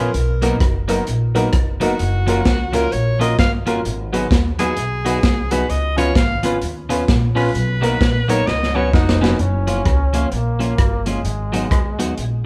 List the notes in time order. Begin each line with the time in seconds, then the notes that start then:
Already playing: F4 A#4
0.14 B1, closed hi-hat
0.42 F#3 A#3 B3 D#4 F#4 A#4, closed hi-hat
0.60 F#1, kick, cross-stick, closed hi-hat
0.88 F#3 A#3 B3 D#4 F#4 A#4, closed hi-hat
1.07 A#1, closed hi-hat
1.35 F#3 A#3 B3 D#4 F#4 A#4, closed hi-hat
1.53 F#1, kick, cross-stick, closed hi-hat
1.80 F#3 A#3 B3 D#4 F#4 A#4, closed hi-hat
1.99 F#1, closed hi-hat
2.27 F3 A#3 C#4 F4 F#4 A#4, closed hi-hat
2.45 C#2, kick, snare, closed hi-hat
2.73 F3 A#3 C#4 F4 F#4 A#4, closed hi-hat
2.92 A#1 C#5, closed hi-hat
3.19 F3 A#3 C#4 F4 F#4 A#4 D#5, closed hi-hat
3.38 G1 F5, kick, snare, closed hi-hat
3.66 F3 A#3 C#4 F4 F#4 A#4, closed hi-hat
3.85 G#1, closed hi-hat
4.13 F#3 B3 D#4 F#4 G#4 B4, closed hi-hat
4.31 D#2, kick, snare, closed hi-hat
4.59 F#3 B3 D#4 F#4 G#4 B4, closed hi-hat
4.77 B1, closed hi-hat
5.05 F#3 B3 D#4 F#4 G#4 B4, closed hi-hat
5.23 C2, kick, snare, closed hi-hat
5.51 F#3 B3 D#4 F#4 G#4 B4, closed hi-hat
5.70 C#2 D#5, closed hi-hat
5.96 F3 B3 C#4 F4 B4 C#5, closed hi-hat
6.15 G#1 F5, kick, snare, closed hi-hat
6.43 F3 B3 C#4 F4 B4, closed hi-hat
6.62 D#2, closed hi-hat
6.89 F3 B3 C#4 F4 B4, closed hi-hat
7.08 A#1, kick, snare, closed hi-hat
7.35 F3 B3 C#4 F4 B4, open hi-hat
7.54 B1, closed hi-hat
7.81 F#3 A#3 B3 D#4 F#4 A#4, closed hi-hat
8.01 A#1, kick, snare, closed hi-hat
8.28 F#3 A#3 B3 D#4 F#4 A#4 C#5, closed hi-hat
8.47 C#2 D#5, snare
8.63 snare
8.75 F#3 B3 C#4 F#4 B4 C#5
8.93 F1 D#4 F#4, kick, snare
9.09 snare
9.21 F#3 B3 C#4 F#4 B4, snare
9.39 F#1 C#4, closed hi-hat
9.67 F3 A#3 C#4 F4, closed hi-hat
9.86 C#2, kick, cross-stick, closed hi-hat
10.13 F3 A#3 C#4 F4, closed hi-hat
10.32 A#1 A#3, muted clean electric guitar stroke, closed hi-hat
10.59 F3 A#3 C#4 F4, closed hi-hat
10.78 G1, kick, cross-stick, closed hi-hat
11.06 F3 G#3 A#3 C#4 F4, closed hi-hat
11.24 G#1, closed hi-hat
11.52 F#3 B3 D#4 F#4, closed hi-hat
11.71 D#2, kick, cross-stick, closed hi-hat
11.99 F#3 B3 D#4 F#4, closed hi-hat
12.18 A#1, closed hi-hat